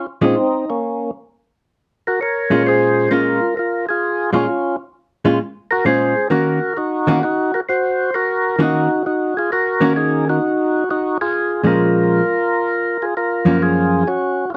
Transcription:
0.21 0.34 A#2 medium
0.21 0.34 G#3 medium
0.21 0.65 C4 medium
0.21 0.34 C#4 medium
0.21 0.70 D#4 medium
0.21 0.35 F4 medium
0.70 1.11 A#3 medium
0.70 1.11 C#4 medium
2.07 2.19 F#4 medium
2.07 2.20 A#4 medium
2.21 2.63 A#4 medium
2.21 2.67 C#5 medium
2.50 3.07 A#2 medium
2.50 3.08 G#3 medium
2.50 3.08 C#4 medium
2.50 3.08 F4 medium
2.66 3.09 G#4 medium
2.66 3.12 C5 medium
3.11 3.38 A#2 medium
3.11 3.39 G#3 medium
3.11 3.39 C#4 medium
3.11 3.39 F4 medium
3.11 3.54 F4 medium
3.11 3.56 A#4 loud
3.57 3.87 F4 medium
3.57 3.86 A#4 medium
3.89 4.31 F4 medium
3.89 4.30 G#4 medium
4.33 4.46 A#2 medium
4.33 4.46 G#3 medium
4.33 4.46 C#4 medium
4.33 4.77 C#4 medium
4.33 4.46 F4 medium
4.33 4.76 F4 medium
5.25 5.38 A#2 medium
5.25 5.38 G#3 medium
5.25 5.38 C#4 medium
5.25 5.38 F4 medium
5.71 5.84 F#4 medium
5.71 5.85 A#4 medium
5.85 6.13 A#2 soft
5.85 6.13 G#3 medium
5.85 6.13 C#4 medium
5.85 6.13 F4 medium
5.85 6.28 G#4 medium
5.85 6.27 C5 medium
6.30 6.58 D#3 medium
6.30 6.58 A#3 medium
6.30 6.59 C#4 medium
6.30 6.59 F#4 medium
6.30 6.73 F#4 medium
6.30 6.77 A#4 medium
6.77 7.19 D#4 medium
6.77 7.22 F#4 medium
7.07 7.20 D#3 medium
7.07 7.20 A#3 medium
7.07 7.20 C#4 medium
7.07 7.20 F#4 medium
7.23 7.52 D#4 medium
7.23 7.54 F#4 medium
7.54 7.61 F#4 medium
7.54 7.60 A#4 medium
7.69 8.11 F#4 medium
7.69 8.15 C5 loud
8.14 8.57 F#4 medium
8.14 8.60 A#4 loud
8.59 8.87 D#3 medium
8.59 8.87 A#3 medium
8.59 8.87 C#4 medium
8.59 9.03 D#4 medium
8.59 8.87 F#4 medium
8.59 9.05 F#4 loud
9.06 9.34 D#4 medium
9.06 9.37 F#4 medium
9.37 9.50 F4 medium
9.37 9.51 G#4 medium
9.52 9.94 F#4 medium
9.52 9.93 A#4 loud
9.81 10.38 D#3 medium
9.81 10.38 A#3 medium
9.81 10.38 C#4 medium
9.81 10.38 F#4 medium
9.96 10.25 D#4 medium
9.96 10.28 G#4 medium
10.29 10.84 D#4 medium
10.29 10.89 F#4 loud
10.90 11.17 D#4 medium
10.90 11.17 F#4 medium
11.21 11.62 F4 medium
11.21 11.66 G#4 loud
11.63 12.20 A#2 medium
11.63 12.21 F3 medium
11.63 12.21 G#3 medium
11.63 12.21 C#4 medium
11.63 12.97 F4 medium
11.63 13.05 A#4 medium
13.02 13.14 F4 medium
13.02 13.14 G#4 medium
13.17 13.58 F4 medium
13.17 13.62 A#4 medium
13.45 14.02 F#2 medium
13.45 14.03 F3 medium
13.45 14.03 A#3 medium
13.45 14.03 C#4 medium
13.62 14.03 F4 medium
13.62 14.08 G#4 medium
14.07 14.45 C#4 medium
14.07 14.50 F#4 medium
14.50 14.52 F4 medium

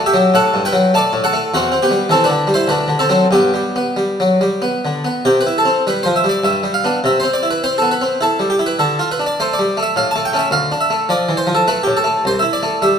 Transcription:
0.00 0.14 A3 medium
0.06 0.32 G4 medium
0.06 0.34 E5 medium
0.14 0.34 F#3 soft
0.34 0.54 A2 medium
0.34 0.61 A4 medium
0.34 0.59 F#5 loud
0.54 0.72 G2 soft
0.65 0.91 B4 medium
0.65 0.93 G5 medium
0.73 0.93 F#3 medium
0.94 1.13 A3 medium
0.94 1.22 D5 medium
0.94 1.19 A5 loud
1.13 1.33 A2 medium
1.24 1.50 A4 medium
1.24 1.52 F#5 loud
1.33 1.52 A3 medium
1.54 1.71 E2 medium
1.54 1.71 C4 medium
1.54 1.77 F#4 loud
1.72 1.91 C4 soft
1.83 2.09 B3 medium
1.83 2.06 G4 medium
1.91 2.11 G3 soft
2.09 2.30 E3 soft
2.09 2.24 C4 medium
2.09 2.25 A4 medium
2.24 2.52 D4 medium
2.24 2.54 B4 medium
2.29 2.49 D3 soft
2.47 2.68 G3 soft
2.54 2.69 E4 medium
2.54 2.69 C5 medium
2.68 2.88 D2 medium
2.68 2.99 D4 medium
2.68 2.95 B4 medium
2.88 3.11 D3 soft
2.99 3.09 C4 medium
2.99 3.27 A4 medium
3.09 3.25 F#3 soft
3.09 3.25 C4 soft
3.31 3.52 G2 medium
3.31 3.75 B3 medium
3.31 4.93 G4 medium
3.54 3.76 G3 soft
3.76 3.98 B3 soft
3.97 4.19 G3 soft
4.20 4.41 F#3 soft
4.41 4.63 G3 soft
4.62 4.84 B3 soft
4.85 5.06 D3 soft
5.05 5.25 B3 soft
5.25 5.45 C3 soft
5.25 5.40 G4 medium
5.41 5.55 B4 medium
5.47 5.67 E4 soft
5.58 5.82 A4 medium
5.65 5.86 C4 soft
5.87 6.07 G3 soft
5.87 6.01 B4 medium
6.03 6.25 F3 soft
6.03 6.16 C5 medium
6.16 6.30 E5 medium
6.24 6.44 G3 soft
6.29 6.44 D5 medium
6.44 6.63 G2 soft
6.44 6.74 E5 medium
6.64 6.84 G3 soft
6.74 7.03 F5 medium
6.84 6.98 B3 soft
6.84 6.99 D4 soft
7.04 7.23 C3 soft
7.04 7.19 E5 medium
7.20 7.44 C4 soft
7.20 7.34 C5 medium
7.34 7.48 D5 medium
7.43 7.63 E4 soft
7.51 7.64 B4 medium
7.64 7.84 C4 soft
7.64 7.78 C5 medium
7.78 8.01 B3 soft
7.78 7.92 A4 medium
7.91 8.21 B4 medium
8.01 8.22 C4 soft
8.21 8.41 E4 soft
8.21 8.50 A4 medium
8.39 8.60 G3 soft
8.50 8.64 G4 medium
8.59 8.78 E4 soft
8.66 8.80 B4 medium
8.79 8.97 D3 medium
8.79 9.08 A4 medium
8.99 9.19 F4 soft
9.12 9.24 B4 medium
9.19 9.38 D4 soft
9.26 9.39 D5 medium
9.40 9.58 A3 soft
9.40 9.53 C5 medium
9.53 9.81 D5 medium
9.59 9.76 G3 soft
9.77 9.95 A3 soft
9.83 9.95 E5 medium
9.96 10.14 A2 medium
9.96 10.10 F5 medium
10.11 10.24 A5 medium
10.16 10.32 A3 soft
10.25 10.38 G5 medium
10.33 10.47 A3 soft
10.33 10.47 C#4 soft
10.39 10.52 E5 medium
10.51 10.70 D2 medium
10.51 10.80 F5 medium
10.72 10.91 D4 soft
10.81 11.05 E5 medium
10.90 11.10 A3 soft
11.09 11.29 F3 soft
11.09 11.38 D5 medium
11.29 11.47 E3 soft
11.37 11.52 C5 medium
11.47 11.67 F3 soft
11.55 11.67 A4 medium
11.68 11.87 A3 soft
11.68 11.81 B4 medium
11.83 12.06 A2 soft
11.83 11.96 G4 medium
11.97 12.24 A4 medium
12.04 12.23 A3 soft
12.25 12.43 C2 medium
12.25 12.39 C5 medium
12.39 12.62 E4 soft
12.39 12.53 E5 medium
12.53 12.77 D5 medium
12.63 12.82 A3 soft
12.82 12.99 G3 soft
12.82 12.96 E5 medium

